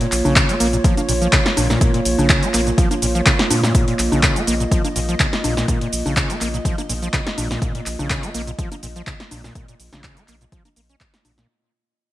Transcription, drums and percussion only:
0.01 closed hi-hat medium
0.12 clap soft
0.12 open hi-hat loud
0.12 shaker medium
0.25 high conga medium
0.25 shaker soft
0.36 kick loud
0.36 clap loud
0.36 closed hi-hat medium
0.36 shaker soft
0.49 closed hi-hat medium
0.49 shaker soft
0.60 open hi-hat loud
0.60 shaker medium
0.73 closed hi-hat soft
0.73 shaker soft
0.84 kick loud
0.84 closed hi-hat medium
0.84 shaker soft
0.97 closed hi-hat medium
0.97 high conga soft
0.97 shaker soft
1.09 open hi-hat loud
1.09 shaker medium
1.22 closed hi-hat soft
1.22 shaker soft
1.33 kick loud
1.33 clap loud
1.33 closed hi-hat medium
1.33 shaker soft
1.46 snare medium
1.46 closed hi-hat medium
1.57 open hi-hat loud
1.57 high conga medium
1.57 shaker medium
1.70 snare medium
1.70 shaker soft
1.81 kick loud
1.81 closed hi-hat medium
1.81 shaker soft
1.94 closed hi-hat medium
2.05 open hi-hat loud
2.05 shaker medium
2.18 high conga medium
2.18 shaker soft
2.29 kick loud
2.29 clap loud
2.29 closed hi-hat medium
2.29 shaker soft
2.43 closed hi-hat medium
2.43 shaker soft
2.54 clap soft
2.54 open hi-hat loud
2.54 shaker medium
2.67 closed hi-hat soft
2.67 shaker soft
2.78 kick loud
2.78 closed hi-hat medium
2.78 shaker soft
2.91 closed hi-hat soft
2.91 high conga soft
2.91 shaker soft
3.02 open hi-hat loud
3.02 shaker medium
3.15 closed hi-hat soft
3.15 shaker soft
3.26 kick loud
3.26 clap loud
3.26 closed hi-hat medium
3.26 shaker soft
3.39 snare medium
3.39 closed hi-hat soft
3.51 open hi-hat loud
3.51 high conga medium
3.51 shaker medium
3.64 snare medium
3.64 shaker soft
3.75 kick loud
3.75 closed hi-hat medium
3.75 shaker soft
3.88 closed hi-hat medium
3.99 clap soft
3.99 open hi-hat loud
3.99 shaker medium
4.12 high conga medium
4.12 shaker soft
4.23 kick loud
4.23 clap loud
4.23 closed hi-hat medium
4.23 shaker soft
4.36 closed hi-hat medium
4.36 shaker soft
4.47 open hi-hat loud
4.47 shaker medium
4.60 closed hi-hat soft
4.60 shaker soft
4.72 kick loud
4.72 closed hi-hat medium
4.72 shaker soft
4.85 closed hi-hat soft
4.85 high conga soft
4.85 shaker soft
4.96 open hi-hat loud
4.96 shaker medium
5.09 closed hi-hat soft
5.09 shaker soft
5.20 kick loud
5.20 clap loud
5.20 closed hi-hat medium
5.20 shaker soft
5.33 snare medium
5.33 closed hi-hat medium
5.44 open hi-hat loud
5.44 high conga medium
5.44 shaker medium
5.57 snare medium
5.57 shaker soft
5.68 kick loud
5.68 closed hi-hat medium
5.68 shaker soft
5.81 closed hi-hat medium
5.93 open hi-hat loud
5.93 shaker medium
6.06 high conga medium
6.06 shaker soft
6.17 kick loud
6.17 clap loud
6.17 closed hi-hat medium
6.17 shaker soft
6.30 closed hi-hat medium
6.30 shaker soft
6.41 clap soft
6.41 open hi-hat loud
6.41 shaker medium
6.54 closed hi-hat soft
6.54 shaker soft
6.65 kick loud
6.65 closed hi-hat medium
6.65 shaker soft
6.78 closed hi-hat medium
6.78 high conga soft
6.78 shaker soft
6.89 open hi-hat loud
6.89 shaker medium
7.02 closed hi-hat soft
7.02 shaker soft
7.13 kick loud
7.13 clap loud
7.13 closed hi-hat medium
7.13 shaker soft
7.27 snare medium
7.27 closed hi-hat medium
7.38 open hi-hat loud
7.38 high conga medium
7.38 shaker medium
7.51 snare medium
7.51 shaker soft
7.62 kick loud
7.62 closed hi-hat medium
7.62 shaker soft
7.75 closed hi-hat medium
7.86 clap soft
7.86 open hi-hat loud
7.86 shaker medium
7.99 high conga medium
7.99 shaker soft
8.10 kick loud
8.10 clap loud
8.10 closed hi-hat medium
8.10 shaker soft
8.23 closed hi-hat medium
8.23 shaker soft
8.34 open hi-hat loud
8.34 shaker medium
8.47 closed hi-hat soft
8.47 shaker soft
8.59 kick loud
8.59 closed hi-hat medium
8.59 shaker soft
8.72 closed hi-hat medium
8.72 high conga soft
8.72 shaker soft
8.83 open hi-hat loud
8.83 shaker medium
8.96 closed hi-hat soft
8.96 shaker soft
9.07 kick loud
9.07 clap loud
9.07 closed hi-hat medium
9.07 shaker soft
9.20 snare medium
9.20 closed hi-hat medium
9.31 open hi-hat loud
9.31 high conga medium
9.31 shaker medium
9.44 snare medium
9.44 shaker soft
9.55 kick loud
9.55 closed hi-hat medium
9.55 shaker soft
9.68 closed hi-hat medium
9.68 shaker soft
9.80 open hi-hat loud
9.80 shaker medium
9.93 snare medium
9.93 closed hi-hat soft
9.93 high conga medium
9.93 shaker soft
10.04 kick loud
10.04 clap loud
10.04 closed hi-hat medium
10.04 shaker soft
10.17 closed hi-hat medium
10.17 shaker soft
10.28 clap soft
10.28 open hi-hat loud
10.28 shaker medium
10.41 closed hi-hat soft
10.41 shaker soft
10.52 kick loud
10.52 closed hi-hat medium
10.52 shaker soft
10.65 closed hi-hat medium
10.65 high conga soft
10.65 shaker soft
10.76 open hi-hat loud
10.76 shaker medium
10.89 closed hi-hat soft
10.89 shaker soft
11.01 kick loud
11.01 clap loud
11.01 closed hi-hat medium
11.01 shaker soft
11.14 snare medium
11.14 closed hi-hat medium
11.14 shaker soft
11.25 open hi-hat loud
11.25 high conga medium
11.25 shaker medium
11.38 snare medium
11.38 shaker soft

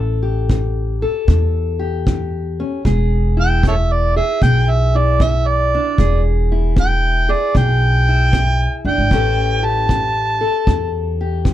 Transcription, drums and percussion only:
0.49 kick medium
1.28 kick medium
2.07 kick medium
2.85 kick medium
3.63 kick medium
4.42 kick medium
5.20 kick medium
5.98 kick medium
6.77 kick medium
7.55 kick medium
8.33 kick medium
9.11 kick medium
9.89 kick medium
10.67 kick medium
11.45 kick medium

